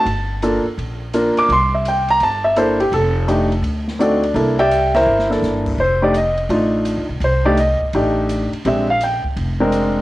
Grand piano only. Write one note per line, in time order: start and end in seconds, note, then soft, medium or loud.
0.00 0.40 A5 medium
0.43 0.63 A#3 medium
0.43 0.63 D4 soft
0.43 0.63 F4 soft
0.43 0.64 A4 medium
1.14 1.49 A#3 medium
1.14 1.50 D4 soft
1.14 1.49 F4 medium
1.14 1.50 A#4 medium
1.39 1.50 D6 medium
1.52 1.73 C6 medium
1.74 1.85 E5 medium
1.88 2.09 G5 medium
2.10 2.21 A#5 loud
2.23 2.45 A5 medium
2.44 2.56 E5 medium
2.56 2.77 A#3 medium
2.56 2.78 D4 soft
2.56 2.78 E4 medium
2.56 2.78 A4 medium
2.56 2.80 C5 medium
2.80 2.92 G4 medium
2.94 3.60 A4 medium
3.28 3.49 A3 medium
3.28 3.49 D4 medium
3.28 3.49 D#4 medium
3.28 3.49 G4 medium
3.99 4.20 A3 soft
3.99 4.20 C4 soft
3.99 4.34 D4 medium
3.99 4.21 D#4 soft
3.99 4.21 F#4 medium
3.99 4.34 A4 medium
3.99 4.55 D5 medium
4.35 4.56 A#3 medium
4.35 4.56 D4 medium
4.35 4.56 E4 soft
4.35 4.56 A4 medium
4.59 4.92 G4 medium
4.59 4.93 D5 medium
4.59 4.92 E5 medium
4.59 4.92 G5 loud
4.95 5.28 E4 medium
4.95 5.28 A#4 medium
4.95 5.28 C5 medium
4.95 5.28 E5 medium
5.30 5.75 A#3 soft
5.30 5.76 D4 soft
5.30 5.76 E4 soft
5.30 5.76 A4 medium
5.80 6.02 C5 medium
6.02 6.13 A3 medium
6.02 6.13 D4 medium
6.02 6.13 D#4 medium
6.02 6.13 G4 medium
6.02 6.15 D5 medium
6.17 6.38 D#5 medium
6.50 7.04 A3 medium
6.50 7.04 D4 medium
6.50 7.05 D#4 medium
6.50 7.05 F4 medium
7.24 7.46 C5 medium
7.45 7.56 A3 medium
7.45 7.56 D4 medium
7.45 7.56 D#4 medium
7.45 7.56 G4 medium
7.45 7.57 D5 medium
7.59 7.81 D#5 medium
7.94 8.48 A3 medium
7.94 8.48 D4 medium
7.94 8.48 D#4 medium
7.94 8.49 G4 medium
8.66 8.86 G#3 medium
8.66 8.86 C4 medium
8.66 8.86 D4 soft
8.66 8.87 G4 medium
8.66 8.89 E5 medium
8.90 9.01 F5 medium
9.04 9.25 G5 medium
9.60 10.02 G#3 medium
9.60 10.02 C4 medium
9.60 10.02 D4 medium
9.60 10.02 A#4 medium